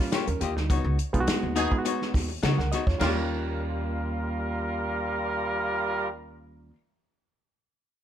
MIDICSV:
0, 0, Header, 1, 8, 480
1, 0, Start_track
1, 0, Tempo, 577145
1, 580, Time_signature, 4, 2, 24, 8
1, 6683, End_track
2, 0, Start_track
2, 0, Title_t, "Hollow-body jazz guitar"
2, 0, Program_c, 0, 26
2, 100, Note_on_c, 0, 58, 87
2, 106, Note_on_c, 0, 65, 83
2, 109, Note_on_c, 0, 67, 87
2, 112, Note_on_c, 0, 73, 89
2, 221, Note_off_c, 0, 58, 0
2, 224, Note_off_c, 0, 65, 0
2, 224, Note_off_c, 0, 73, 0
2, 226, Note_off_c, 0, 67, 0
2, 345, Note_on_c, 0, 58, 56
2, 350, Note_on_c, 0, 65, 66
2, 358, Note_on_c, 0, 67, 66
2, 360, Note_on_c, 0, 75, 65
2, 438, Note_off_c, 0, 58, 0
2, 440, Note_off_c, 0, 65, 0
2, 444, Note_off_c, 0, 67, 0
2, 445, Note_off_c, 0, 75, 0
2, 581, Note_on_c, 0, 59, 78
2, 585, Note_on_c, 0, 63, 82
2, 588, Note_on_c, 0, 66, 86
2, 592, Note_on_c, 0, 73, 83
2, 802, Note_off_c, 0, 59, 0
2, 804, Note_off_c, 0, 63, 0
2, 806, Note_off_c, 0, 66, 0
2, 808, Note_off_c, 0, 73, 0
2, 1294, Note_on_c, 0, 59, 89
2, 1295, Note_on_c, 0, 63, 97
2, 1301, Note_on_c, 0, 66, 88
2, 1304, Note_on_c, 0, 75, 91
2, 1418, Note_off_c, 0, 66, 0
2, 1419, Note_off_c, 0, 59, 0
2, 1419, Note_off_c, 0, 63, 0
2, 1419, Note_off_c, 0, 75, 0
2, 1539, Note_on_c, 0, 59, 82
2, 1543, Note_on_c, 0, 63, 80
2, 1547, Note_on_c, 0, 66, 83
2, 1551, Note_on_c, 0, 73, 93
2, 1761, Note_off_c, 0, 59, 0
2, 1763, Note_off_c, 0, 63, 0
2, 1765, Note_off_c, 0, 66, 0
2, 1767, Note_off_c, 0, 73, 0
2, 2018, Note_on_c, 0, 59, 84
2, 2024, Note_on_c, 0, 63, 88
2, 2027, Note_on_c, 0, 66, 85
2, 2030, Note_on_c, 0, 73, 80
2, 2140, Note_off_c, 0, 59, 0
2, 2143, Note_off_c, 0, 63, 0
2, 2145, Note_off_c, 0, 66, 0
2, 2146, Note_off_c, 0, 73, 0
2, 2269, Note_on_c, 0, 59, 59
2, 2274, Note_on_c, 0, 63, 60
2, 2279, Note_on_c, 0, 66, 73
2, 2279, Note_on_c, 0, 73, 60
2, 2359, Note_off_c, 0, 59, 0
2, 2362, Note_off_c, 0, 63, 0
2, 2364, Note_off_c, 0, 66, 0
2, 2365, Note_off_c, 0, 73, 0
2, 2492, Note_on_c, 0, 58, 75
2, 2509, Note_on_c, 0, 65, 77
2, 2521, Note_on_c, 0, 67, 73
2, 2535, Note_on_c, 0, 73, 83
2, 5597, Note_off_c, 0, 58, 0
2, 5614, Note_off_c, 0, 65, 0
2, 5625, Note_off_c, 0, 67, 0
2, 5639, Note_off_c, 0, 73, 0
2, 6683, End_track
3, 0, Start_track
3, 0, Title_t, "Horn section"
3, 0, Program_c, 1, 61
3, 1298, Note_on_c, 1, 59, 86
3, 1300, Note_on_c, 1, 63, 95
3, 1302, Note_on_c, 1, 68, 102
3, 1452, Note_off_c, 1, 59, 0
3, 1453, Note_off_c, 1, 63, 0
3, 1454, Note_off_c, 1, 68, 0
3, 2499, Note_on_c, 1, 55, 93
3, 2500, Note_on_c, 1, 70, 90
3, 2501, Note_on_c, 1, 65, 83
3, 5051, Note_off_c, 1, 55, 0
3, 5051, Note_off_c, 1, 70, 0
3, 5052, Note_off_c, 1, 65, 0
3, 6683, End_track
4, 0, Start_track
4, 0, Title_t, "Reed electric piano"
4, 0, Program_c, 2, 4
4, 0, Note_on_c, 2, 55, 89
4, 0, Note_on_c, 2, 58, 81
4, 0, Note_on_c, 2, 61, 86
4, 0, Note_on_c, 2, 65, 97
4, 98, Note_off_c, 2, 55, 0
4, 99, Note_off_c, 2, 58, 0
4, 100, Note_off_c, 2, 61, 0
4, 101, Note_off_c, 2, 65, 0
4, 227, Note_on_c, 2, 70, 61
4, 233, Note_on_c, 2, 61, 53
4, 334, Note_off_c, 2, 70, 0
4, 337, Note_off_c, 2, 61, 0
4, 338, Note_on_c, 2, 67, 72
4, 342, Note_on_c, 2, 58, 60
4, 460, Note_off_c, 2, 67, 0
4, 462, Note_off_c, 2, 58, 0
4, 466, Note_on_c, 2, 63, 69
4, 470, Note_on_c, 2, 55, 60
4, 694, Note_off_c, 2, 63, 0
4, 697, Note_off_c, 2, 55, 0
4, 940, Note_on_c, 2, 56, 90
4, 942, Note_on_c, 2, 59, 87
4, 945, Note_on_c, 2, 63, 88
4, 946, Note_on_c, 2, 65, 81
4, 997, Note_off_c, 2, 65, 0
4, 1001, Note_on_c, 2, 66, 106
4, 1310, Note_off_c, 2, 56, 0
4, 1311, Note_off_c, 2, 59, 0
4, 1313, Note_off_c, 2, 63, 0
4, 1341, Note_off_c, 2, 66, 0
4, 1423, Note_on_c, 2, 56, 87
4, 1425, Note_on_c, 2, 59, 76
4, 1426, Note_on_c, 2, 63, 78
4, 1429, Note_on_c, 2, 65, 72
4, 1479, Note_off_c, 2, 65, 0
4, 1483, Note_on_c, 2, 66, 89
4, 1891, Note_off_c, 2, 56, 0
4, 1891, Note_off_c, 2, 59, 0
4, 1892, Note_off_c, 2, 63, 0
4, 1921, Note_off_c, 2, 66, 0
4, 2147, Note_on_c, 2, 78, 57
4, 2150, Note_on_c, 2, 70, 51
4, 2254, Note_off_c, 2, 78, 0
4, 2256, Note_off_c, 2, 70, 0
4, 2259, Note_on_c, 2, 75, 77
4, 2265, Note_on_c, 2, 66, 58
4, 2380, Note_off_c, 2, 75, 0
4, 2383, Note_off_c, 2, 66, 0
4, 2386, Note_on_c, 2, 73, 68
4, 2390, Note_on_c, 2, 65, 59
4, 2482, Note_on_c, 2, 55, 71
4, 2494, Note_on_c, 2, 58, 74
4, 2505, Note_off_c, 2, 65, 0
4, 2505, Note_on_c, 2, 61, 69
4, 2515, Note_on_c, 2, 65, 81
4, 2614, Note_off_c, 2, 73, 0
4, 5553, Note_off_c, 2, 55, 0
4, 5565, Note_off_c, 2, 58, 0
4, 5576, Note_off_c, 2, 61, 0
4, 5586, Note_off_c, 2, 65, 0
4, 6683, End_track
5, 0, Start_track
5, 0, Title_t, "Upright bass"
5, 0, Program_c, 3, 32
5, 228, Note_on_c, 3, 39, 86
5, 314, Note_off_c, 3, 39, 0
5, 340, Note_on_c, 3, 39, 86
5, 467, Note_off_c, 3, 39, 0
5, 467, Note_on_c, 3, 38, 86
5, 580, Note_off_c, 3, 38, 0
5, 580, Note_on_c, 3, 37, 110
5, 678, Note_off_c, 3, 37, 0
5, 702, Note_on_c, 3, 37, 111
5, 791, Note_off_c, 3, 37, 0
5, 949, Note_on_c, 3, 35, 100
5, 1035, Note_off_c, 3, 35, 0
5, 1189, Note_on_c, 3, 39, 97
5, 1373, Note_off_c, 3, 39, 0
5, 1782, Note_on_c, 3, 39, 81
5, 1966, Note_off_c, 3, 39, 0
5, 2022, Note_on_c, 3, 49, 102
5, 2119, Note_off_c, 3, 49, 0
5, 2150, Note_on_c, 3, 37, 80
5, 2235, Note_off_c, 3, 37, 0
5, 2388, Note_on_c, 3, 40, 88
5, 2474, Note_off_c, 3, 40, 0
5, 2499, Note_on_c, 3, 39, 106
5, 5570, Note_off_c, 3, 39, 0
5, 6683, End_track
6, 0, Start_track
6, 0, Title_t, "Muted hollow-body jazz guitar strokes"
6, 234, Note_on_c, 9, 29, 51
6, 317, Note_off_c, 9, 29, 0
6, 478, Note_on_c, 9, 29, 48
6, 562, Note_off_c, 9, 29, 0
6, 952, Note_on_c, 9, 29, 42
6, 1035, Note_off_c, 9, 29, 0
6, 1191, Note_on_c, 9, 29, 43
6, 1274, Note_off_c, 9, 29, 0
6, 1422, Note_on_c, 9, 29, 51
6, 1505, Note_off_c, 9, 29, 0
6, 1776, Note_on_c, 9, 29, 43
6, 1859, Note_off_c, 9, 29, 0
6, 1900, Note_on_c, 9, 29, 43
6, 1983, Note_off_c, 9, 29, 0
6, 2155, Note_on_c, 9, 29, 40
6, 2238, Note_off_c, 9, 29, 0
6, 2395, Note_on_c, 9, 29, 41
6, 2479, Note_off_c, 9, 29, 0
6, 6683, End_track
7, 0, Start_track
7, 0, Title_t, "Muted upright bass strokes"
7, 1057, Note_on_c, 9, 29, 47
7, 1140, Note_off_c, 9, 29, 0
7, 6683, End_track
8, 0, Start_track
8, 0, Title_t, "Drums"
8, 102, Note_on_c, 9, 42, 94
8, 103, Note_on_c, 9, 38, 105
8, 186, Note_off_c, 9, 38, 0
8, 186, Note_off_c, 9, 42, 0
8, 227, Note_on_c, 9, 42, 41
8, 310, Note_off_c, 9, 42, 0
8, 340, Note_on_c, 9, 42, 71
8, 423, Note_off_c, 9, 42, 0
8, 472, Note_on_c, 9, 38, 37
8, 556, Note_off_c, 9, 38, 0
8, 581, Note_on_c, 9, 36, 111
8, 582, Note_on_c, 9, 42, 92
8, 664, Note_off_c, 9, 36, 0
8, 665, Note_off_c, 9, 42, 0
8, 821, Note_on_c, 9, 42, 61
8, 904, Note_off_c, 9, 42, 0
8, 948, Note_on_c, 9, 36, 85
8, 948, Note_on_c, 9, 42, 43
8, 1031, Note_off_c, 9, 36, 0
8, 1031, Note_off_c, 9, 42, 0
8, 1059, Note_on_c, 9, 42, 99
8, 1065, Note_on_c, 9, 38, 118
8, 1142, Note_off_c, 9, 42, 0
8, 1148, Note_off_c, 9, 38, 0
8, 1299, Note_on_c, 9, 42, 72
8, 1382, Note_off_c, 9, 42, 0
8, 1427, Note_on_c, 9, 36, 92
8, 1510, Note_off_c, 9, 36, 0
8, 1542, Note_on_c, 9, 42, 87
8, 1625, Note_off_c, 9, 42, 0
8, 1676, Note_on_c, 9, 38, 32
8, 1760, Note_off_c, 9, 38, 0
8, 1782, Note_on_c, 9, 36, 88
8, 1787, Note_on_c, 9, 46, 61
8, 1789, Note_on_c, 9, 38, 34
8, 1866, Note_off_c, 9, 36, 0
8, 1870, Note_off_c, 9, 46, 0
8, 1872, Note_off_c, 9, 38, 0
8, 2023, Note_on_c, 9, 42, 90
8, 2024, Note_on_c, 9, 38, 110
8, 2107, Note_off_c, 9, 38, 0
8, 2107, Note_off_c, 9, 42, 0
8, 2156, Note_on_c, 9, 38, 33
8, 2239, Note_off_c, 9, 38, 0
8, 2264, Note_on_c, 9, 42, 62
8, 2268, Note_on_c, 9, 38, 34
8, 2348, Note_off_c, 9, 42, 0
8, 2352, Note_off_c, 9, 38, 0
8, 2387, Note_on_c, 9, 36, 87
8, 2394, Note_on_c, 9, 38, 36
8, 2470, Note_off_c, 9, 36, 0
8, 2477, Note_off_c, 9, 38, 0
8, 2501, Note_on_c, 9, 49, 85
8, 2505, Note_on_c, 9, 38, 106
8, 2584, Note_off_c, 9, 49, 0
8, 2588, Note_off_c, 9, 38, 0
8, 6683, End_track
0, 0, End_of_file